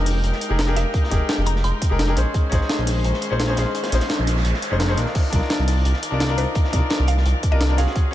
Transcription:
Already playing: analog synth bass F1, string section G#3 D#4 A#4 G5, grand piano D#4 G4 G#4 A#4
0.06 snare, closed hi-hat, open hi-hat, tambourine
0.24 analog synth bass F1, closed hi-hat
0.32 snare
0.41 closed hi-hat, tambourine
0.49 analog synth bass F1, grand piano D#4 G4 G#4 A#4
0.59 snare, closed hi-hat
0.66 grand piano D#4 G4 G#4 A#4
0.75 analog synth bass F1, grand piano D#4 G4 G#4 A#4, synth pluck F5, closed hi-hat, tambourine
0.94 kick, closed hi-hat
1.04 snare
1.09 analog synth bass F1, grand piano D#4 G4 G#4, kick, snare, closed hi-hat, tambourine
1.14 grand piano A#4
1.29 snare, closed hi-hat
1.38 analog synth bass F1
1.46 synth pluck A#5, closed hi-hat, tambourine
1.56 snare
1.64 analog synth bass F1, synth pluck C6, closed hi-hat
1.82 kick, closed hi-hat, tambourine
1.89 analog synth bass F1, grand piano D#4 G4 G#4 A#4
1.99 snare, closed hi-hat
2.07 grand piano D#4 G4 G#4 A#4
2.16 analog synth bass A#1, string section D#3 C#4 C5, grand piano C#4 D#4 G#4 C5, snare, closed hi-hat, tambourine
2.34 kick, closed hi-hat
2.49 analog synth bass A#1, grand piano C#4 D#4 G#4, kick, snare, closed hi-hat, tambourine
2.54 grand piano C5
2.61 snare
2.69 snare, closed hi-hat
2.78 analog synth bass A#1, closed hi-hat
2.87 snare, closed hi-hat, open hi-hat, tambourine
3.04 analog synth bass A#1, closed hi-hat
3.13 snare
3.22 closed hi-hat, tambourine
3.30 analog synth bass A#1, grand piano C#4 D#4 G#4 C5
3.40 snare, closed hi-hat
3.47 grand piano C#4 D#4 G#4 C5
3.56 analog synth bass A#1, grand piano C#4 D#4 G#4 C5, snare, closed hi-hat, tambourine
3.75 closed hi-hat, noise sweep
3.84 snare, closed hi-hat, tambourine
3.90 analog synth bass A#1, grand piano C#4 D#4 G#4, snare, closed hi-hat, tambourine
3.95 grand piano C5
4.01 snare, closed hi-hat, tambourine
4.09 snare, closed hi-hat
4.19 analog synth bass A#1
4.27 snare, closed hi-hat, tambourine
4.36 snare
4.45 analog synth bass A#1, closed hi-hat
4.54 snare
4.62 closed hi-hat, tambourine
4.70 analog synth bass F1, grand piano C#4 D#4 G#4 C5
4.80 snare, closed hi-hat
4.88 grand piano C#4 D#4 G#4 C5, snare
4.96 analog synth bass A#1, grand piano D4 D#4 F4 A#4, snare, closed hi-hat, tambourine
5.06 snare
5.15 string section F3 A#4 D5, kick, closed hi-hat, crash
5.30 analog synth bass C2, grand piano D4 D#4 F4, kick, snare, closed hi-hat, tambourine
5.35 grand piano A#4
5.42 snare
5.50 snare, closed hi-hat
5.59 analog synth bass C2, closed hi-hat
5.68 snare, closed hi-hat, open hi-hat, tambourine
5.85 analog synth bass C2, closed hi-hat
5.94 snare
6.03 closed hi-hat, tambourine
6.11 analog synth bass C2, grand piano D4 D#4 F4 A#4
6.20 snare, closed hi-hat
6.28 grand piano D4 D#4 F4 A#4
6.37 analog synth bass C2, grand piano D4 D#4 F4 A#4, synth pluck C5, closed hi-hat, open hi-hat, tambourine
6.55 kick, closed hi-hat
6.64 snare
6.70 analog synth bass C2, grand piano D4 D#4 F4, kick, snare, closed hi-hat, tambourine
6.75 grand piano A#4
6.90 snare, closed hi-hat
6.99 analog synth bass C2
7.07 synth pluck F5, closed hi-hat, tambourine
7.17 snare
7.26 analog synth bass C2, closed hi-hat
7.43 kick, closed hi-hat, tambourine
7.51 analog synth bass C2, grand piano D4 D#4 F4 A#4, synth pluck D#5
7.61 snare, closed hi-hat
7.68 grand piano D4 D#4 F4 A#4
7.77 analog synth bass C2, grand piano C#4 F4 F#4 G#4, synth pluck F5, snare, closed hi-hat, open hi-hat, tambourine
7.87 snare
7.96 string section F#3 C#4 G#4 F5, kick, closed hi-hat
8.11 grand piano C#4

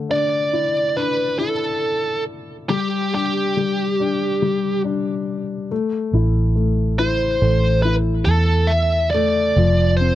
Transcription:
Already playing: grand piano D3 A3
0.09 grand piano D4, lead electric guitar D5
0.53 grand piano E4
0.96 grand piano D4, lead electric guitar B4
1.39 grand piano E4, lead electric guitar A4
2.70 grand piano G3, lead electric guitar G4
3.14 grand piano D4, lead electric guitar G4
3.57 grand piano G3
4.00 grand piano D4
4.42 grand piano G3
4.84 grand piano D4
5.71 grand piano A3
6.13 fingered electric bass A1, grand piano E4
6.56 grand piano A3
6.99 grand piano E4, lead electric guitar C5
7.42 fingered electric bass A1, grand piano A3
7.82 grand piano E4, lead electric guitar B4
8.25 fingered electric bass E2, lead electric guitar A4
8.67 lead electric guitar E5
9.10 grand piano A3, lead electric guitar D5
9.56 fingered electric bass F1, grand piano F3
9.97 grand piano C4, lead electric guitar C5

